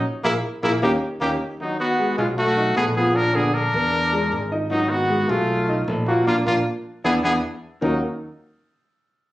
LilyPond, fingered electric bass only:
\new Staff \with { instrumentName = "Fingered electric bass" } { \clef bass \time 4/4 \key ees \minor \tempo 4 = 154 r8 bes,,8 r8 bes,,8 ees,8 r8 ees,8 r8 | r4. ces,4. bes,,4~ | bes,,4. fes,4. gis,,4~ | gis,,4. ces,4. bes,,4 |
bes,,8 bes,,8 r4 e,8 e,8 r4 | ees,8 r2. r8 | }